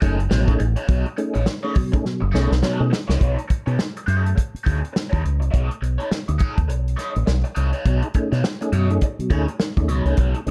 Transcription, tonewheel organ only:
0.02 A3 C#4 D#4 G#4
0.31 B2 F#3
0.48 A3 C#4 D#4 G#4
0.60 D#4 G#4
0.89 B2 F#3
1.18 A3 C#4 D#4 G#4
1.35 D#4 G#4
1.64 A3 C#4 D#4 G#4
1.76 B2 F#3
1.93 A3 C#4 D#4 G#4
2.05 B2 F#3
2.34 A3 C#4 D#4 G#4
2.52 D#4 G#4
2.63 B2 F#3
2.80 A3 C#4 D#4 G#4
2.92 D#4 G#4
7.85 B2 F#3
8.04 D#4 G#4
8.15 A3 C#4 D#4 G#4
8.61 A3 C#4 D#4 G#4
8.73 B2 F#3
8.90 A3 C#4 D#4 G#4
9.02 D#4 G#4
9.19 B2 F#3
9.30 A3 C#4 D#4 G#4
9.77 A3 C#4 D#4 G#4
9.89 B2 F#3
10.06 A3 C#4 D#4 G#4
10.18 B2 F#3
10.36 D#4 G#4
10.46 A3 C#4 D#4 G#4

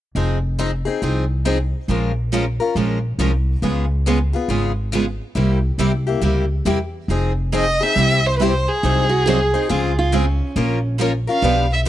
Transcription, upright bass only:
0.15 F1
1.02 C2
1.88 A#1
2.75 A#1
3.18 C2
3.62 C#2
4.48 G#1
5.35 C2
5.78 C2
6.21 C#2
6.65 E2
7.08 F1
7.96 C2
8.83 C2
9.70 C#2
10.56 A#1
11.42 B1

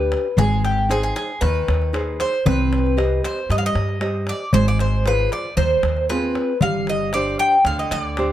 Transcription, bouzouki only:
Already playing: B4
0.38 G#4
0.65 G4
0.91 G#4
1.03 G#4
1.16 G#4
1.41 B4
2.20 C5
2.46 B4
3.25 C5
3.51 D#5
3.58 F5
3.66 D#5
4.29 D5
4.54 C5
4.68 D5
4.80 C5
5.07 B4
5.33 D5
5.57 C5
6.09 B4
6.62 F5
6.89 D#5
7.14 D5
7.39 G5
7.66 F5
7.79 D#5
7.92 D5

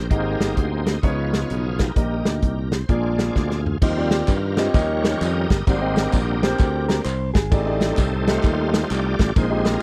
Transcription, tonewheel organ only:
Already playing: G5
0.10 G#3 A#3 C4 D#4 G4 A#4
0.55 D#4 G4 C5
0.99 F3 B3 C#5 D#5
1.03 D#4 F4 G#4
1.79 D#4 G4 A#4
1.97 G3 A#3 D#4
2.73 C5
2.89 G#3 C4 D4 F4 G#4 D5
3.82 F3 G3 C4 F4 G4 A#4
4.31 A#4
4.61 G4 A#4 C#5
4.76 F3 G3 C#4
5.07 C#5
5.24 G4 A#4 D#5
5.68 G3 A#3 C4 D#4 G4 C5
5.99 D4 G4 A#4
6.90 G3 A#3 C4 D4
7.54 C4 D#4 A4
7.83 G3 A3 D#4
7.99 A4
8.28 D#4 F4 C5
8.74 C5
8.91 F4 G4 D5
9.37 G#3 C4 D#4 C5
9.66 D#4 F4 A#4

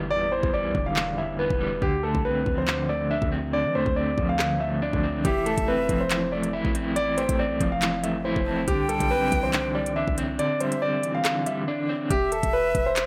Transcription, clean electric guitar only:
Already playing: D3 E3 G3 B3
0.11 E2
0.32 E3
0.53 G3
0.75 D3
0.96 E2
1.18 E3
1.39 B3
1.61 G3
1.82 D3
2.03 A3
2.25 C4
2.46 F3
2.68 D3
2.89 A3
3.11 D4
3.32 C4
3.53 D3
3.75 A3
3.96 C4
4.18 F3
4.39 D3
4.60 A3
4.82 D4
5.03 C4
5.25 E3
5.46 A3
5.68 C4
5.89 F3
6.11 E3
6.32 A3
6.53 E4
6.75 C4
6.96 E3
7.18 A3
7.39 C4
7.61 F3
7.82 E3
8.03 A3
8.25 E4
8.46 C4
8.68 D3
8.89 G3
9.11 C4
9.32 E3
9.53 D3
9.75 G3
9.96 D4
10.18 C4
10.39 D3
10.61 G3
10.82 C4
11.03 E3
11.25 D3
11.46 G3
11.68 D4
11.89 C4

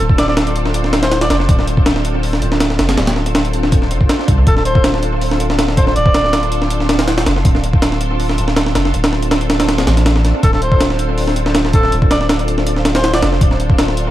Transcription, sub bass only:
0.00 D1
1.30 F1
1.49 D1
2.42 D1
2.79 F1
2.98 D1
3.91 F1
4.28 C2
4.47 D1
5.96 D1
7.26 F1
7.45 D1
8.38 D1
8.75 F1
8.94 D1
9.87 A1
10.43 D1
11.93 D1
13.23 F1
13.41 D1

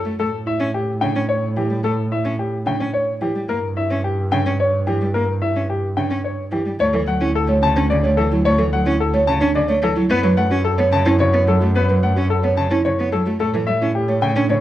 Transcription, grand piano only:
0.20 A4
0.47 E5
0.74 G4
1.01 G5
1.28 C#5
1.57 G4
1.84 A4
2.12 E5
2.39 G4
2.67 G5
2.93 C#5
3.22 G4
3.49 A#4
3.77 E5
4.04 G4
4.32 G5
4.60 C#5
4.87 G4
5.14 A#4
5.42 E5
5.70 G4
5.97 G5
6.24 C#5
6.52 G4
6.80 C#5
7.08 F#5
7.36 A4
7.63 A5
7.90 D5
8.17 A4
8.45 C#5
8.73 F#5
9.00 A4
9.27 A5
9.55 D5
9.84 A4
10.11 B4
10.38 F#5
10.65 A4
10.93 A5
11.20 C#5
11.48 A4
11.76 B4
12.03 F#5
12.30 A4
12.58 A5
12.85 C#5
13.12 A4
13.40 A4
13.67 E5
13.95 G4
14.22 G5
14.50 C#5

